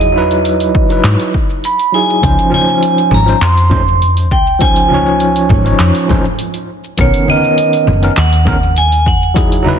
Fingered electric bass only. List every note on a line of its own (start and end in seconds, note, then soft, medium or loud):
0.00 0.75 E2 medium
0.75 0.95 B1 medium
1.04 1.14 G#2 loud
2.23 2.33 C#2 medium
3.12 3.32 G#1 medium
3.41 4.31 F2 medium
4.31 5.52 C#2 medium
5.50 5.70 G#1 loud
5.79 5.90 F2 medium
6.99 7.09 B1 medium
7.87 8.07 F#1 medium
8.17 9.06 D#2 medium
9.06 9.79 E2 medium